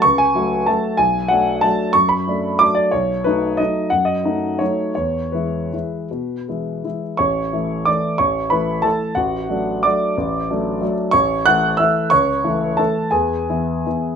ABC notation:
X:1
M:3/4
L:1/8
Q:1/4=181
K:A
V:1 name="Grand piano"
c' g3 a2 | g2 f2 a2 | c' b3 d' d | c2 B2 ^d2 |
f ^d3 c2 | c2 B4- | B4- B z | [cc']4 [dd']2 |
[cc']2 [Bb]2 [Aa]2 | [Ff]4 [dd']2- | [dd']4- [dd'] z | [cc']2 [ff']2 [ee']2 |
[cc']4 [Aa]2 | [Gg]6 |]
V:2 name="Grand piano"
C,,2 [F,A,F]2 [F,A,F]2 | B,,,2 [F,A,D]2 [F,A,D]2 | F,,2 [F,A,D]2 [F,A,D]2 | B,,,2 [F,A,^D]2 [F,A,D]2 |
F,,2 [F,A,^D]2 [F,A,D]2 | E,,2 [E,G,E]2 [E,G,E]2 | B,,2 [E,G,E]2 [E,G,E]2 | A,,,2 [E,A,E]2 [E,A,E]2 |
A,,,2 [E,A,E]2 [E,A,E]2 | A,,,2 [F,A,D]2 [F,A,D]2 | A,,,2 [F,A,D]2 [F,A,D]2 | A,,,2 [E,A,E]2 [E,A,E]2 |
C,,2 [E,A,E]2 [E,A,E]2 | E,,2 [E,B,E]2 [E,B,E]2 |]